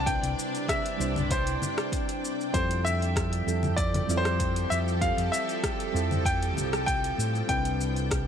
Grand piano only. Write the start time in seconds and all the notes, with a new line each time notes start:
0.06 G5
0.69 E5
1.32 C5
2.54 C5
2.85 E5
3.77 D5
4.17 C5
4.70 E5
5.01 F5
5.32 E5
6.26 G5
6.86 G5
7.49 G5